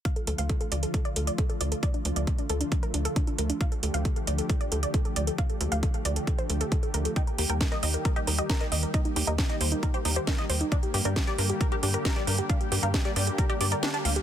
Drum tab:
HH |xxxxxxxxxxxxxxxx|xxxxxxxxxxxxxxxx|xxxxxxxxxxxxxxxx|xxxxxxxxxxxxxxxx|
SD |----------------|----------------|----------------|----------------|
BD |o---o---o---o---|o---o---o---o---|o---o---o---o---|o---o---o---o---|

HH |xxoxxxoxxxoxxxox|xxoxxxoxxxoxxxox|xxoxxxoxxxoxxxox|xxoxxxoxxxoxxxox|
SD |----o-------o---|----o-------o---|----o-------o---|----o-------o---|
BD |o---o---o---o---|o---o---o---o---|o---o---o---o---|o---o---o-------|